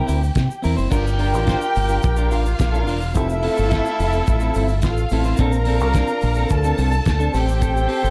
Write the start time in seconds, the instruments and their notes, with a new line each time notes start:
Already playing: string section G4 G5
0.07 fingered electric bass D2, clean electric guitar C4 E4 A#4, open hi-hat, shaker
0.21 muted clean electric guitar stroke, shaker
0.34 fingered electric bass C3, muted clean electric guitar stroke, kick, snare, closed hi-hat, shaker
0.49 muted clean electric guitar stroke, shaker
0.62 fingered electric bass E2, clean electric guitar C4 E4 A#4, open hi-hat, shaker
0.77 fingered electric bass F#1, clean electric guitar C4 E4 C5, shaker
0.90 fingered electric bass G1, clean electric guitar D4 F4 A#4, horn section F4 G4 A#4, string section G4 G5, kick, crash, shaker
1.05 muted clean electric guitar stroke, shaker
1.19 clean electric guitar D4 F4 A#4, open hi-hat
1.33 fingered electric bass A1, clean electric guitar D4 F4 A#4, shaker
1.46 clean electric guitar D4 F4 C5, kick, snare, closed hi-hat, shaker
1.61 muted clean electric guitar stroke, shaker
1.75 fingered electric bass G1, muted clean electric guitar stroke, open hi-hat, shaker
1.88 clean electric guitar D4 F4 A#4, shaker
2.02 fingered electric bass A#1, muted clean electric guitar stroke, kick, closed hi-hat, shaker
2.17 clean electric guitar D4 F4 A#4, shaker
2.31 fingered electric bass A1, clean electric guitar D4 F4 A#4, string section F4 F5, open hi-hat, shaker
2.44 muted clean electric guitar stroke, shaker
2.58 fingered electric bass A#1, muted clean electric guitar stroke, kick, snare, closed hi-hat, shaker
2.72 clean electric guitar D4 F4 A#4, shaker
2.87 fingered electric bass E1, clean electric guitar D4 F4 A#4, open hi-hat, shaker
3.01 muted clean electric guitar stroke, shaker
3.14 fingered electric bass F1, horn section A3 F4 A4, clean electric guitar C4 E4 A4, string section E4 E5, kick, closed hi-hat, shaker
3.29 muted clean electric guitar stroke, shaker
3.43 clean electric guitar C4 E4 A4, open hi-hat
3.57 fingered electric bass G1, clean electric guitar C4 E4 A4, shaker
3.71 clean electric guitar C4 E4 A4, kick, snare, closed hi-hat, shaker
3.85 muted clean electric guitar stroke, shaker
4.00 fingered electric bass F1, muted clean electric guitar stroke, open hi-hat, shaker
4.13 clean electric guitar C4 E4 A4, shaker
4.27 fingered electric bass A1, muted clean electric guitar stroke, kick, closed hi-hat, shaker
4.40 clean electric guitar C4 E4 A4, shaker
4.54 fingered electric bass G1, clean electric guitar C4 E4 A4, open hi-hat, shaker
4.68 muted clean electric guitar stroke, shaker
4.82 fingered electric bass A1, string section F4 F5, muted clean electric guitar stroke, kick, snare, closed hi-hat, shaker
4.97 muted clean electric guitar stroke, shaker
5.09 fingered electric bass A1, clean electric guitar C4 E4 A4, open hi-hat, shaker
5.24 clean electric guitar C4 E4 C5, shaker
5.37 fingered electric bass A#1, clean electric guitar C4 D4, horn section D4 F4 A#4, string section A#4 A#5, kick, closed hi-hat, shaker
5.41 clean electric guitar A4
5.52 muted clean electric guitar stroke, shaker
5.65 clean electric guitar C4 D4 A4, open hi-hat
5.80 fingered electric bass C2, clean electric guitar C4 D4 A4, shaker
5.94 clean electric guitar C4 D4 A#4, kick, snare, closed hi-hat, shaker
6.07 muted clean electric guitar stroke, shaker
6.21 fingered electric bass A#1, muted clean electric guitar stroke, open hi-hat, shaker
6.35 clean electric guitar D4 A4, shaker
6.39 clean electric guitar C4
6.49 fingered electric bass D2, string section A4 A5, muted clean electric guitar stroke, kick, closed hi-hat, shaker
6.64 clean electric guitar C4 D4 A4, shaker
6.78 fingered electric bass C2, clean electric guitar C4 D4 A4, open hi-hat, shaker
6.92 muted clean electric guitar stroke, shaker
7.05 fingered electric bass D2, muted clean electric guitar stroke, kick, snare, closed hi-hat, shaker
7.19 clean electric guitar C4 D4 A4, shaker
7.34 fingered electric bass A1, clean electric guitar C4 G4 A4, horn section G4 A4 C5, string section G4 G5, open hi-hat, shaker
7.47 muted clean electric guitar stroke, shaker
7.60 clean electric guitar C4 G4 A4, kick, closed hi-hat, shaker
7.75 muted clean electric guitar stroke, shaker
7.88 clean electric guitar C4 G4 A4, open hi-hat
8.03 fingered electric bass G1, clean electric guitar C4 G4 A4, shaker